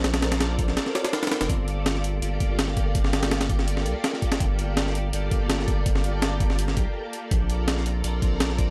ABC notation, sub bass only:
X:1
M:4/4
L:1/16
Q:1/4=165
K:Gm
V:1 name="Sub bass" clef=bass
B,,,8 z6 z F,,, | G,,,8 G,,,2 G,,,6 | G,,,8- G,,,2 C,, z4 z | G,,,8 G,,,2 G,,,6 |
G,,,8- G,,,2 C,, z4 z | B,,,8 B,,,2 B,,,6 |]